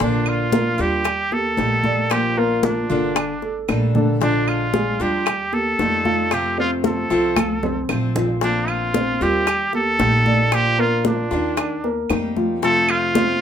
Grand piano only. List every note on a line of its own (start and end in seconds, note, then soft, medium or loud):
0.00 0.43 D3 medium
0.00 0.43 D4 medium
0.53 0.74 A#3 medium
0.53 0.74 A#4 medium
0.79 1.22 G3 medium
0.79 1.22 G4 medium
1.32 1.75 A#3 medium
1.32 1.75 G4 medium
1.85 2.28 D5 medium
2.37 2.80 A#3 medium
2.37 2.80 A#4 medium
2.90 3.33 D3 medium
2.90 3.33 D4 medium
3.43 3.86 A4 medium
3.95 4.17 D3 medium
3.95 4.17 D4 medium
4.21 4.64 D3 medium
4.21 4.65 D4 medium
4.74 4.95 G#3 medium
4.74 4.95 G#4 medium
5.00 5.43 G3 medium
5.00 5.43 G4 medium
5.52 5.96 A#3 medium
5.52 5.96 G4 medium
6.05 6.48 F4 medium
6.05 6.48 F5 medium
6.58 7.01 C4 medium
6.58 7.01 C5 medium
7.10 7.54 F3 medium
7.10 7.54 F4 medium
7.63 8.06 C4 medium
7.63 8.06 C5 medium
8.16 8.37 F3 medium
8.16 8.37 F4 medium
8.42 8.85 F3 medium
8.42 8.85 F4 medium
8.95 9.16 C4 medium
8.95 9.16 C5 medium
9.21 9.64 G3 medium
9.21 9.64 G4 medium
9.74 10.17 A#3 medium
9.74 10.17 G4 medium
10.26 10.69 D5 medium
10.78 11.21 A#3 medium
10.78 11.22 A#4 medium
11.31 11.74 D#3 medium
11.31 11.74 D4 medium
11.84 12.27 A#3 medium
11.84 12.27 A#4 medium
12.36 12.58 F3 medium
12.36 12.58 F4 medium
12.63 13.06 F3 medium
12.63 13.06 F4 medium
13.15 13.37 C4 medium
13.15 13.37 C5 medium